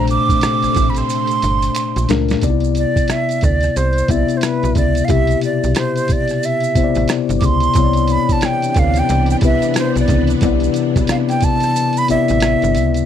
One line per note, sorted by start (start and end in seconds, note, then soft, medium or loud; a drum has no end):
0.00 0.19 A#1 loud
0.00 0.86 A#2 medium
0.00 2.40 C3 medium
0.00 0.86 A3 medium
0.00 2.40 A3 medium
0.00 2.39 C4 medium
0.00 0.90 D4 medium
0.00 2.38 D4 medium
0.00 0.87 C5 medium
0.07 0.91 D6 loud
0.07 closed hi-hat medium
0.07 maracas soft
0.29 kick medium
0.29 closed hi-hat soft
0.29 maracas soft
0.41 finger snap medium
0.41 cross-stick loud
0.41 closed hi-hat medium
0.41 maracas medium
0.63 0.68 A1 soft
0.63 cross-stick soft
0.63 closed hi-hat soft
0.63 maracas soft
0.75 1.03 A1 medium
0.75 kick medium
0.75 closed hi-hat medium
0.75 maracas soft
0.90 0.99 B5 medium
0.95 2.10 C6 medium
0.95 cross-stick soft
0.95 closed hi-hat soft
0.95 maracas soft
1.10 closed hi-hat medium
1.10 maracas medium
1.27 closed hi-hat soft
1.27 maracas soft
1.42 1.70 G1 medium
1.42 closed hi-hat medium
1.42 maracas soft
1.62 closed hi-hat soft
1.62 maracas soft
1.75 finger snap medium
1.75 closed hi-hat medium
1.75 maracas medium
1.96 2.07 A#1 medium
1.96 closed hi-hat soft
1.96 maracas medium
2.09 2.36 C#2 medium
2.09 2.37 A#2 medium
2.09 2.38 A3 medium
2.09 2.38 D4 medium
2.09 2.38 A#4 medium
2.09 snare loud
2.09 closed hi-hat medium
2.09 maracas soft
2.29 snare medium
2.29 closed hi-hat soft
2.29 maracas soft
2.41 2.86 C2 medium
2.41 3.53 C3 medium
2.41 3.53 B3 medium
2.41 2.51 D#4 medium
2.41 3.54 D5 medium
2.41 kick loud
2.41 closed hi-hat medium
2.41 maracas medium
2.50 3.57 E4 medium
2.60 closed hi-hat soft
2.60 maracas soft
2.75 3.12 D5 medium
2.75 closed hi-hat medium
2.75 maracas soft
2.96 kick medium
2.96 closed hi-hat soft
2.96 maracas soft
3.08 3.46 E5 medium
3.08 finger snap soft
3.08 cross-stick loud
3.08 closed hi-hat medium
3.08 maracas medium
3.29 closed hi-hat soft
3.29 maracas soft
3.41 3.70 D2 medium
3.41 3.78 D5 medium
3.41 kick medium
3.41 closed hi-hat medium
3.41 maracas soft
3.61 cross-stick soft
3.61 closed hi-hat soft
3.61 maracas soft
3.76 4.03 C2 medium
3.76 4.13 C5 medium
3.76 closed hi-hat medium
3.76 maracas medium
3.93 closed hi-hat soft
3.98 maracas soft
4.08 4.25 C2 medium
4.08 4.94 C3 medium
4.08 4.94 B3 medium
4.08 4.94 E4 medium
4.08 4.39 D5 medium
4.08 4.95 E5 medium
4.08 kick medium
4.08 closed hi-hat medium
4.08 maracas soft
4.28 closed hi-hat soft
4.28 maracas soft
4.37 4.44 C5 medium
4.41 4.76 B4 medium
4.41 finger snap medium
4.41 cross-stick loud
4.41 closed hi-hat medium
4.41 maracas medium
4.63 4.74 B1 medium
4.63 closed hi-hat soft
4.63 maracas soft
4.75 5.03 C#2 medium
4.75 5.06 D5 medium
4.75 kick medium
4.75 closed hi-hat medium
4.75 maracas soft
4.95 closed hi-hat soft
4.95 maracas soft
5.05 6.19 C3 medium
5.05 5.12 F5 medium
5.05 closed hi-hat medium
5.09 5.36 C2 loud
5.09 6.20 B2 medium
5.09 6.20 E4 medium
5.09 6.20 G4 medium
5.09 5.43 E5 medium
5.09 kick loud
5.09 maracas medium
5.27 closed hi-hat soft
5.27 maracas soft
5.41 5.79 D5 medium
5.41 closed hi-hat medium
5.41 maracas soft
5.64 5.74 B1 medium
5.64 closed hi-hat soft
5.64 maracas soft
5.75 6.14 C5 medium
5.75 finger snap medium
5.75 cross-stick loud
5.75 closed hi-hat medium
5.75 maracas medium
5.96 closed hi-hat soft
5.96 maracas soft
6.08 kick medium
6.08 closed hi-hat medium
6.08 maracas soft
6.12 6.47 D5 medium
6.28 cross-stick soft
6.28 closed hi-hat soft
6.28 maracas soft
6.43 7.10 E5 medium
6.43 closed hi-hat medium
6.43 maracas medium
6.60 closed hi-hat soft
6.60 maracas soft
6.75 6.84 A1 soft
6.75 7.60 C3 medium
6.75 7.61 B3 medium
6.75 7.61 E4 medium
6.75 6.84 C5 medium
6.75 kick medium
6.75 closed hi-hat medium
6.75 maracas soft
6.84 7.65 D5 medium
6.95 7.07 A1 medium
6.95 closed hi-hat soft
6.95 maracas soft
7.08 finger snap medium
7.08 cross-stick loud
7.08 closed hi-hat medium
7.08 maracas medium
7.29 7.40 G1 medium
7.29 closed hi-hat soft
7.29 maracas soft
7.40 7.69 C#2 medium
7.40 7.47 D6 medium
7.40 kick medium
7.40 closed hi-hat medium
7.40 maracas soft
7.45 8.13 C6 loud
7.60 closed hi-hat medium
7.60 maracas soft
7.74 8.19 C2 loud
7.74 13.05 C3 medium
7.74 8.87 C3 medium
7.74 13.05 E3 medium
7.74 13.05 B3 medium
7.74 8.87 B3 medium
7.74 13.05 D4 medium
7.74 8.87 E4 medium
7.74 kick loud
7.74 closed hi-hat medium
7.74 maracas medium
7.78 7.85 C#5 medium
7.84 8.91 D5 medium
7.93 closed hi-hat soft
7.93 maracas soft
8.07 closed hi-hat medium
8.07 maracas soft
8.12 8.34 B5 medium
8.29 8.47 A5 medium
8.29 kick medium
8.29 closed hi-hat soft
8.29 maracas soft
8.41 finger snap medium
8.41 cross-stick loud
8.41 closed hi-hat medium
8.41 maracas medium
8.45 8.80 G5 medium
8.62 closed hi-hat soft
8.62 maracas soft
8.74 9.03 D2 medium
8.74 kick medium
8.74 closed hi-hat medium
8.74 maracas soft
8.79 9.00 F5 medium
8.94 cross-stick soft
8.94 closed hi-hat soft
8.94 maracas soft
8.99 9.31 G5 medium
9.09 9.36 C2 loud
9.09 closed hi-hat medium
9.09 maracas medium
9.26 closed hi-hat soft
9.30 9.37 G5 medium
9.30 maracas soft
9.41 9.58 C2 medium
9.41 10.27 C3 medium
9.41 10.28 B3 medium
9.41 10.28 E4 medium
9.41 10.28 B4 medium
9.41 kick medium
9.41 closed hi-hat medium
9.41 maracas soft
9.45 9.75 E5 medium
9.62 closed hi-hat soft
9.62 maracas soft
9.74 finger snap medium
9.74 cross-stick loud
9.74 closed hi-hat medium
9.74 maracas medium
9.79 9.96 C5 medium
9.95 10.07 B1 medium
9.95 closed hi-hat soft
9.95 maracas soft
10.00 10.29 D5 medium
10.08 10.36 C#2 medium
10.08 kick medium
10.08 closed hi-hat medium
10.08 maracas soft
10.27 closed hi-hat soft
10.27 maracas soft
10.41 10.69 C2 loud
10.41 11.53 C3 medium
10.41 11.53 B3 medium
10.41 11.54 E4 medium
10.41 11.54 D5 loud
10.41 kick loud
10.41 closed hi-hat medium
10.41 maracas medium
10.60 closed hi-hat soft
10.60 maracas soft
10.74 closed hi-hat medium
10.74 maracas soft
10.96 11.07 B1 medium
10.96 kick medium
10.96 closed hi-hat soft
10.96 maracas soft
11.07 11.17 F5 medium
11.07 finger snap medium
11.07 cross-stick loud
11.07 closed hi-hat medium
11.07 maracas medium
11.29 11.46 G5 medium
11.29 cross-stick soft
11.29 closed hi-hat soft
11.29 maracas soft
11.41 11.99 A5 loud
11.41 kick loud
11.41 closed hi-hat medium
11.41 maracas soft
11.60 cross-stick soft
11.60 closed hi-hat soft
11.60 maracas soft
11.76 closed hi-hat medium
11.76 maracas medium
11.93 closed hi-hat soft
11.97 12.10 B5 medium
11.97 maracas medium
12.08 12.18 A1 soft
12.08 12.94 C3 medium
12.08 12.94 B3 medium
12.08 12.94 E4 medium
12.08 12.95 D5 medium
12.08 13.06 E5 loud
12.08 closed hi-hat medium
12.08 maracas soft
12.28 12.57 A1 medium
12.28 closed hi-hat soft
12.28 maracas soft
12.40 finger snap medium
12.40 cross-stick loud
12.40 closed hi-hat medium
12.40 maracas medium
12.62 12.78 G1 medium
12.62 closed hi-hat soft
12.62 maracas medium
12.75 13.03 C#2 medium
12.75 closed hi-hat medium
12.75 maracas soft
12.94 closed hi-hat medium
12.94 maracas soft